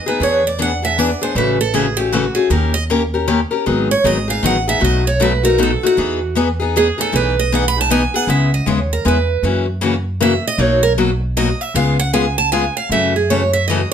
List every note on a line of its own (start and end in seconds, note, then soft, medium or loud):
0.06 0.20 B3 medium
0.06 0.21 D#4 soft
0.06 0.20 G#4 medium
0.06 0.21 B4 medium
0.20 1.13 E2 medium
0.20 0.41 E3 medium
0.20 0.42 B3 medium
0.20 0.42 D4 medium
0.20 0.42 G#4 medium
0.20 0.45 C#5 medium
0.47 0.60 D5 medium
0.59 0.70 E3 medium
0.59 0.70 B3 medium
0.59 0.70 D4 medium
0.59 0.71 G#4 medium
0.59 0.84 F#5 medium
0.82 0.97 B3 soft
0.82 0.97 D4 medium
0.82 0.97 G#4 medium
0.82 0.99 E5 medium
0.98 1.09 E3 medium
0.98 1.09 B3 medium
0.98 1.09 D4 medium
0.98 1.09 G#4 loud
0.98 1.22 D5 medium
1.21 1.36 B3 soft
1.21 1.36 D4 medium
1.21 1.36 G#4 medium
1.21 1.36 C5 medium
1.35 2.28 A1 medium
1.35 1.57 C#3 medium
1.35 1.57 E3 medium
1.35 1.57 A3 medium
1.35 1.57 C#4 medium
1.35 1.57 F#4 medium
1.35 1.60 B4 medium
1.61 1.75 A4 medium
1.74 1.85 C#3 medium
1.74 1.85 E3 medium
1.74 1.86 A3 medium
1.74 1.86 C#4 medium
1.74 1.86 F#4 medium
1.74 1.98 G#4 medium
1.97 2.12 A3 soft
1.97 2.13 C#4 medium
1.97 2.12 F#4 medium
1.97 2.12 G4 medium
2.12 2.24 C#3 medium
2.12 2.24 E3 medium
2.12 2.24 A3 medium
2.12 2.25 C#4 medium
2.12 2.36 F#4 medium
2.12 2.24 F#4 medium
2.35 2.50 A3 medium
2.35 2.50 C#4 medium
2.35 2.50 F#4 medium
2.35 2.50 G#4 medium
2.50 3.43 D#2 medium
2.50 2.72 D#3 medium
2.50 2.72 A#3 medium
2.50 2.72 C#4 medium
2.50 2.72 G4 medium
2.50 2.74 A#4 medium
2.50 2.73 A#4 medium
2.74 2.83 D#5 loud
2.90 3.01 D#3 medium
2.90 3.01 A#3 medium
2.90 3.01 C#4 medium
2.90 3.02 G4 medium
2.90 3.02 A#4 loud
3.14 3.26 C#4 soft
3.14 3.26 G4 soft
3.14 3.27 A#4 soft
3.28 3.39 D#3 medium
3.28 3.39 A#3 medium
3.28 3.39 C#4 loud
3.28 3.39 G4 medium
3.28 3.39 A#4 medium
3.51 3.66 C#4 soft
3.51 3.66 G4 medium
3.51 3.66 A#4 medium
3.66 3.98 G#1 medium
3.66 3.88 D#3 medium
3.66 3.88 F#3 medium
3.66 3.88 B3 medium
3.66 3.88 D#4 medium
3.66 3.88 G#4 medium
3.91 4.05 C#5 medium
4.04 4.37 G#1 medium
4.04 4.16 D#3 medium
4.04 4.16 F#3 medium
4.04 4.17 B3 medium
4.04 4.16 D#4 medium
4.04 4.16 G#4 medium
4.04 4.29 D#5 medium
4.28 4.43 B3 soft
4.28 4.43 D#4 medium
4.28 4.43 G#4 medium
4.28 4.44 F5 medium
4.43 4.76 A1 medium
4.43 4.54 D#3 medium
4.43 4.55 F#3 medium
4.43 4.55 B3 medium
4.43 4.55 D#4 medium
4.43 4.55 G#4 medium
4.43 4.68 F#5 loud
4.68 4.80 B3 soft
4.68 4.80 D#4 medium
4.68 4.81 G#4 medium
4.68 4.83 E5 medium
4.80 5.75 B1 loud
4.80 5.02 B2 medium
4.80 5.02 F#3 medium
4.80 5.03 A3 medium
4.80 5.03 D#4 medium
4.80 5.03 F#4 medium
4.84 5.07 D#5 medium
5.07 5.21 C#5 medium
5.20 5.31 B2 medium
5.20 5.32 F#3 medium
5.20 5.32 A3 loud
5.20 5.32 D#4 medium
5.20 5.32 F#4 loud
5.20 5.44 B4 medium
5.43 5.58 A3 soft
5.43 5.58 D#4 medium
5.43 5.58 F#4 medium
5.43 5.59 A#4 medium
5.58 5.70 B2 medium
5.58 5.70 F#3 medium
5.58 5.70 A3 medium
5.58 5.70 D#4 medium
5.58 5.71 F#4 loud
5.63 5.84 A4 medium
5.83 5.97 A3 soft
5.83 5.97 D#4 soft
5.83 5.97 F#4 medium
5.83 6.34 F#4 medium
5.97 6.90 E2 medium
5.97 6.18 E3 medium
5.97 6.19 B3 medium
5.97 6.19 D#4 medium
5.97 6.19 G#4 medium
6.35 6.47 E3 medium
6.35 6.47 B3 loud
6.35 6.48 D#4 loud
6.35 6.48 G#4 loud
6.60 6.75 B3 soft
6.60 6.75 D#4 medium
6.60 6.74 G#4 medium
6.76 6.86 E3 medium
6.76 6.87 B3 medium
6.76 6.87 D#4 loud
6.76 6.87 G#4 loud
6.76 6.99 G#4 medium
6.98 7.12 B3 medium
6.98 7.12 D#4 medium
6.98 7.12 G#4 medium
6.98 7.14 A4 medium
7.12 8.06 B1 medium
7.12 7.34 E3 medium
7.12 7.34 B3 medium
7.12 7.34 D#4 medium
7.12 7.34 G#4 medium
7.12 7.38 B4 medium
7.39 7.53 D#5 loud
7.52 7.63 E3 loud
7.52 7.63 B3 medium
7.52 7.64 D#4 loud
7.52 7.64 G#4 loud
7.52 7.66 F#5 medium
7.68 7.79 B5 loud
7.77 7.90 B3 soft
7.77 7.90 D#4 medium
7.77 7.90 G#4 medium
7.81 7.91 A5 medium
7.90 8.01 E3 medium
7.90 8.02 B3 medium
7.90 8.02 D#4 loud
7.90 8.02 G#4 loud
7.90 8.16 G#5 medium
8.14 8.28 B3 medium
8.14 8.28 D#4 medium
8.14 8.28 G#4 medium
8.14 8.29 F#5 loud
8.27 8.59 C#2 medium
8.27 8.49 C#3 medium
8.27 8.49 G#3 medium
8.27 8.50 B3 medium
8.27 8.50 E4 medium
8.27 8.50 G#4 medium
8.27 8.52 E5 medium
8.54 8.69 D#5 medium
8.66 9.00 D#2 medium
8.66 8.78 C#3 medium
8.66 8.78 G#3 medium
8.66 8.78 B3 medium
8.66 8.79 E4 medium
8.66 8.79 G#4 medium
8.66 8.91 C#5 medium
8.93 9.06 A#4 medium
9.05 9.38 E2 medium
9.05 9.17 C#3 medium
9.05 9.17 G#3 medium
9.05 9.17 B3 medium
9.05 9.17 E4 medium
9.05 9.17 G#4 medium
9.05 9.43 B4 medium
9.43 10.36 F#2 medium
9.43 9.65 C#3 medium
9.43 9.65 E3 medium
9.43 9.65 A#3 medium
9.43 9.66 C#4 medium
9.43 9.65 F#4 medium
9.81 9.93 C#3 medium
9.81 9.94 E3 medium
9.81 9.93 A#3 medium
9.81 9.94 C#4 medium
9.81 9.94 F#4 medium
10.20 10.32 C#3 medium
10.20 10.32 E3 loud
10.20 10.32 A#3 medium
10.20 10.33 C#4 medium
10.20 10.33 F#4 loud
10.20 10.45 E5 medium
10.47 10.61 D#5 medium
10.58 11.51 B1 medium
10.58 10.80 B2 medium
10.58 10.80 F#3 medium
10.58 10.81 A#3 medium
10.58 10.81 D#4 medium
10.58 10.81 F#4 medium
10.58 10.84 C#5 medium
10.83 10.92 A#4 medium
10.98 11.09 B2 medium
10.98 11.09 F#3 medium
10.98 11.09 A#3 medium
10.98 11.09 D#4 medium
10.98 11.10 F#4 loud
11.37 11.48 B2 medium
11.37 11.48 F#3 medium
11.37 11.48 A#3 medium
11.37 11.48 D#4 medium
11.37 11.48 F#4 loud
11.37 11.61 D#5 medium
11.61 11.75 E5 medium
11.74 12.67 C#2 medium
11.74 11.96 C#3 medium
11.74 11.96 G#3 medium
11.74 11.97 B3 medium
11.74 11.97 F4 medium
11.74 11.97 G#4 medium
11.74 11.99 F5 loud
11.99 12.13 F#5 medium
12.13 12.25 C#3 medium
12.13 12.25 G#3 medium
12.13 12.25 B3 medium
12.13 12.25 F4 loud
12.13 12.25 G#4 loud
12.13 12.37 G#5 medium
12.38 12.52 A5 medium
12.52 12.64 C#3 medium
12.52 12.64 G#3 medium
12.52 12.64 B3 loud
12.52 12.64 F4 medium
12.52 12.64 G#4 medium
12.52 12.75 G#5 medium
12.77 12.91 F5 medium
12.89 13.83 F#2 medium
12.89 13.12 C#3 medium
12.89 13.13 E3 medium
12.89 13.13 A3 medium
12.89 13.13 C#4 medium
12.89 13.13 F#4 medium
12.89 13.15 E5 medium
13.16 13.30 G#4 soft
13.30 13.41 C#3 medium
13.30 13.41 E3 medium
13.30 13.42 A3 medium
13.30 13.41 C#4 medium
13.30 13.42 F#4 medium
13.30 13.53 C#5 medium
13.53 13.67 E5 medium
13.68 13.80 C#3 medium
13.68 13.80 E3 medium
13.68 13.81 A3 medium
13.68 13.80 C#4 medium
13.68 13.81 F#4 medium
13.68 13.91 D#5 medium